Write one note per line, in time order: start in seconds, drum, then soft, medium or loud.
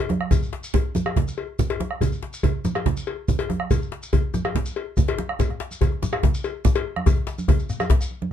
0.09 bombo rim soft
0.09 djembe tone medium
0.09 high conga medium
0.21 bombo rim medium
0.31 bombo low medium
0.31 cowbell soft
0.31 low conga medium
0.31 djembe bass medium
0.31 shekere medium
0.42 high conga soft
0.42 shekere soft
0.53 djembe slap medium
0.64 shekere soft
0.74 bombo low medium
0.74 cowbell soft
0.74 low conga medium
0.74 djembe bass medium
0.74 shekere soft
0.95 djembe slap soft
0.95 high conga medium
0.95 djembe tone medium
0.95 shekere medium
1.06 bombo rim medium
1.06 cowbell soft
1.16 bombo low medium
1.16 djembe slap medium
1.16 high conga soft
1.16 low conga medium
1.16 djembe bass medium
1.28 high conga soft
1.28 shekere soft
1.38 cowbell soft
1.59 bombo low medium
1.59 low conga medium
1.59 djembe bass medium
1.59 shekere medium
1.70 cowbell medium
1.70 djembe slap medium
1.80 bombo rim soft
1.80 djembe tone medium
1.80 high conga medium
1.91 bombo rim medium
2.01 bombo low medium
2.01 cowbell soft
2.01 djembe bass medium
2.01 low conga medium
2.01 shekere medium
2.12 high conga soft
2.12 shekere soft
2.23 djembe slap medium
2.33 shekere soft
2.43 bombo low medium
2.43 cowbell soft
2.43 djembe bass medium
2.43 low conga medium
2.43 shekere soft
2.65 djembe slap soft
2.65 high conga medium
2.65 djembe tone medium
2.65 shekere medium
2.75 bombo rim medium
2.75 cowbell soft
2.86 bombo low medium
2.86 djembe slap medium
2.86 high conga soft
2.86 low conga medium
2.86 djembe bass medium
2.96 high conga soft
2.96 shekere soft
3.07 cowbell soft
3.28 bombo low medium
3.28 low conga medium
3.28 djembe bass medium
3.28 shekere medium
3.39 cowbell medium
3.39 djembe slap soft
3.49 bombo rim soft
3.49 djembe tone medium
3.49 high conga medium
3.60 bombo rim medium
3.70 bombo low medium
3.70 cowbell soft
3.70 low conga medium
3.70 djembe bass medium
3.70 shekere soft
3.81 high conga soft
3.81 shekere soft
3.92 djembe slap medium
4.03 shekere soft
4.13 bombo low medium
4.13 cowbell soft
4.13 low conga medium
4.13 djembe bass medium
4.13 shekere soft
4.34 djembe slap soft
4.34 djembe tone medium
4.34 high conga medium
4.34 shekere medium
4.45 bombo rim medium
4.45 cowbell soft
4.55 bombo low medium
4.55 djembe slap medium
4.55 high conga soft
4.55 low conga medium
4.55 djembe bass medium
4.66 high conga soft
4.66 shekere soft
4.76 cowbell soft
4.97 bombo rim soft
4.97 bombo low medium
4.97 djembe bass medium
4.97 low conga medium
4.97 shekere medium
5.08 cowbell medium
5.08 djembe slap medium
5.18 bombo rim soft
5.18 djembe slap soft
5.18 djembe tone medium
5.18 high conga medium
5.29 bombo rim medium
5.29 high conga soft
5.39 bombo low medium
5.39 cowbell soft
5.39 djembe slap soft
5.39 djembe bass medium
5.39 low conga medium
5.39 shekere medium
5.50 bombo rim soft
5.50 djembe slap soft
5.50 high conga soft
5.60 bombo rim soft
5.60 djembe slap medium
5.71 high conga soft
5.71 shekere soft
5.81 bombo rim soft
5.81 bombo low medium
5.81 cowbell soft
5.81 djembe slap soft
5.81 high conga soft
5.81 djembe bass medium
5.81 low conga medium
5.81 shekere soft
5.92 djembe slap soft
5.92 high conga soft
6.02 djembe tone medium
6.02 high conga medium
6.02 shekere medium
6.13 bombo rim medium
6.13 cowbell soft
6.13 high conga soft
6.23 bombo low medium
6.23 djembe slap medium
6.23 high conga soft
6.23 low conga medium
6.23 djembe bass medium
6.34 shekere soft
6.44 cowbell medium
6.44 djembe slap soft
6.44 high conga soft
6.44 shekere soft
6.65 bombo rim soft
6.65 bombo low loud
6.65 high conga soft
6.65 djembe tone medium
6.65 low conga medium
6.65 djembe bass medium
6.65 shekere medium
6.75 cowbell medium
6.75 djembe slap medium
6.75 high conga soft
6.96 bombo rim medium
6.96 high conga medium
7.06 bombo low loud
7.06 cowbell medium
7.06 djembe tone medium
7.06 djembe bass medium
7.06 low conga medium
7.06 shekere medium
7.27 djembe slap medium
7.27 shekere soft
7.38 high conga medium
7.38 shekere soft
7.48 bombo low loud
7.48 cowbell medium
7.48 djembe tone medium
7.48 djembe bass medium
7.48 low conga medium
7.48 shekere soft
7.59 shekere soft
7.70 bombo rim soft
7.70 shekere medium
7.80 bombo rim medium
7.80 cowbell medium
7.80 high conga medium
7.80 shekere soft
7.90 bombo low loud
7.90 djembe slap medium
7.90 djembe tone medium
7.90 high conga soft
7.90 djembe bass medium
7.90 low conga medium
8.01 bombo rim soft
8.01 shekere soft
8.11 high conga soft
8.22 djembe slap soft
8.22 high conga medium